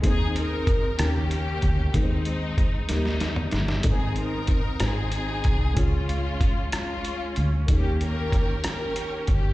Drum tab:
HH |x-x-x-x-x-x-|x-x-x-x-x-x-|x-x-x-x-x-x-|x-x-x-x-x-x-|
SD |------r-----|------ooo-oo|------r-----|------r-----|
T2 |------------|---------o--|------------|------------|
BD |o---o-----o-|o---o-------|o---o-----o-|o---o-------|

HH |x-x-x-x-x-x-|
SD |------r-----|
T2 |------------|
BD |o---o-----o-|